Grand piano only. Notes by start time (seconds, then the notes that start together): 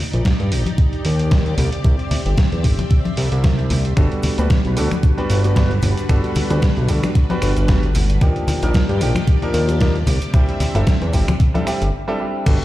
3.97 G3 B3 D4 F#4 A4
4.38 G3 B3 D4 F#4 B4
4.77 G3 B3 D4 F#4 A4
5.18 G3 B3 D4 F#4 B4
5.56 G3 B3 D4 F#4 B4
6.09 G3 B3 D4 F#4 A4
6.50 G3 B3 D4 F#4 B4
6.89 G3 B3 D4 F#4 A4
7.30 G3 B3 D4 F#4 B4
7.68 G3 B3 D4 F#4 B4
8.21 F3 A#3 D4 D#4 G4
8.63 F3 A#3 D4 D#4 A#4
9.01 F3 A#3 D4 D#4 G4
9.42 F3 A#3 D4 D#4 A#4
9.80 F3 A#3 D4 D#4 A#4
10.34 G3 C4 D4 E4 G4
10.75 G3 C4 D4 E4 A4
11.13 G3 C4 D4 E4 G4
11.54 G3 C4 D4 E4 A4
11.66 G3 C4 D4 E4 G4
12.08 G3 C4 D4 E4 A4
12.20 G3 C4 D4 E4 G4
12.46 G3 B3 D4 F#4 A4